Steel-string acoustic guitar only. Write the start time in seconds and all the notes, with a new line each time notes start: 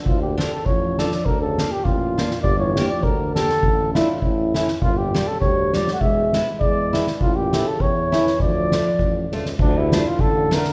0.38 D4 F4 A4
0.99 D4 F4 A4
1.59 A#3 D4 F4
2.18 A#3 D4 F4
2.77 A#3 D4 G4
3.36 A#3 D4 G4
3.95 A3 D4 E4
4.54 A3 C#4 E4
5.14 G3 A#3 D4
5.74 G3 A#3 D4
6.34 G#3 B3 E4
6.93 G#3 B3 E4
7.53 A3 C#4 E4
8.12 A3 C#4 E4
8.72 A3 D4 F4
9.33 A3 D4 F4
9.94 A3 D4 F4
10.51 A3 D4 F4